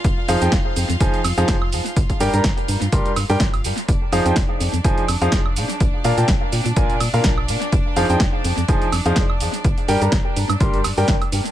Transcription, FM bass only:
X:1
M:4/4
L:1/16
Q:"Swing 16ths" 1/4=125
K:Fdor
V:1 name="FM bass" clef=bass
F,,, z F,, F,, F,,, z F,, F,, F,,, z F,, F,, F,,,2 F,, z | G,,, z G,, G,, G,,, z G,, G,, G,,, z G,, G,, G,,,2 G,, z | F,,, z F,, F,, F,,, z F,, F,, F,,, z F,, F,, F,,,2 B,, z | B,,, z B,, B,, B,,, z B,, B,, B,,, z B,, B,, B,,,2 B,, z |
F,,, z F,, F,, F,,, z F,, F,, F,,, z F,, F,, F,,,2 F,, z | G,,, z G,, G,, G,,, z G,, G,, G,,,2 G,, G,, G,,, z G,, z |]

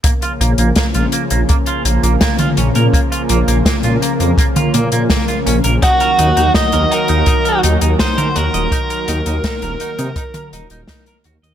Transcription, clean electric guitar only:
X:1
M:4/4
L:1/16
Q:1/4=83
K:Bbm
V:1 name="Clean electric guitar"
B, F B, B, B, F B, B, B, F B, B, B, F D B | B, F B, B, B, F B, B, B, F B, B, B, F D B | E B E E E B E E E B E E E B G e | E B E E E B E E E B E E E B G e |]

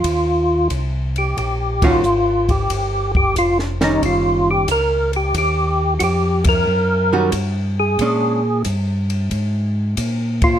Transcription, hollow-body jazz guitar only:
X:1
M:4/4
L:1/8
Q:"Swing" 1/4=91
K:Eb
V:1 name="Hollow-body jazz guitar"
z4 z [E,G,_D^F] z2 | z3 [E,G,_D]3 z2 | z4 z [E,G,_D^F] z2 | [A,^CD] z6 z |]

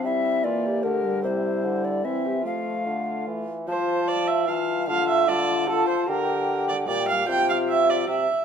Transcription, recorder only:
X:1
M:3/4
L:1/8
Q:1/4=149
K:F
V:1 name="Recorder"
e2 d2 B2 | c3 d e2 | f4 z2 | a4 a2 |
a2 a2 a2 | g4 g2 | g4 g z |]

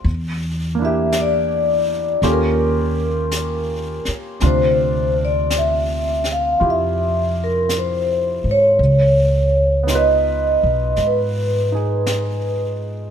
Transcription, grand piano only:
X:1
M:4/4
L:1/8
Q:"Swing" 1/4=55
K:Dm
V:1 name="Grand piano"
z [B,DEG]3 [B,_DFG]4 | [C,DF]4 [EFG]4 | z2 [_C_EF_c]3 [E_A]3 |]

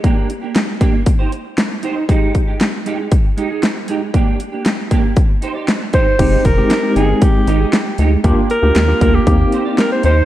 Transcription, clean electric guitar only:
X:1
M:4/4
L:1/16
Q:1/4=117
K:Eb
V:1 name="Clean electric guitar"
[B,DG]2 z [B,DG] z2 [B,DG]2 z [EGc]2 z3 [EGc]2 | [A,EG]2 z [A,EG] z2 [A,EG]2 z2 [A,EG] [A,EA] z2 [A,EG]2 | [B,DG]2 z [B,DG] z2 [B,DG]2 z2 [EGc] [EGd] z2 [EGc]2 | [A,EG]2 z [A,EG] z2 [A,EG]2 z2 [A,EG] [A,EA] z2 [A,EG]2 |
[B,DG]2 z [B,DG] z2 [B,DG]2 z2 [EGc] [EGd] z2 [EGc]2 |]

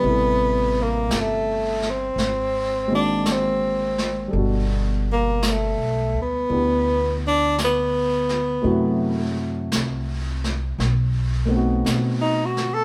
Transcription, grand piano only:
X:1
M:4/4
L:1/8
Q:"Swing" 1/4=56
K:G
V:1 name="Grand piano"
[C,G,EA]4 z [^D,^G,^A,^B,F]3 | [B,,G,DFA]4 [B,DEG]4 | [C,F,A,EF]4 z [A,B,C^DF]3 |]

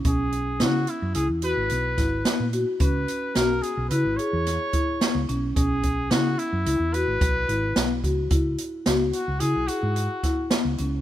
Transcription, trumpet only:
X:1
M:5/4
L:1/8
Q:1/4=109
K:C#dor
V:1 name="Trumpet"
G2 F E G B4 z | B2 A G B c4 z | G2 F E2 B4 z | z3 F G F3 z2 |]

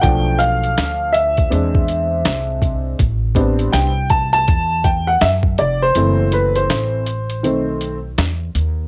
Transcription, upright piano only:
X:1
M:4/4
L:1/16
Q:"Swing 16ths" 1/4=81
K:Ador
V:1 name="Upright piano"
g2 =f4 e8- e2 | z4 g2 a a3 g f e2 d c- | c2 B c6 z6 z |]
V:2 name="Upright piano"
[=F,A,D]8 [^G,^B,D]8 | z2 [G,B,CD]2 z12 | [E,A,C]6 z2 [^D,A,C]2 z6 |]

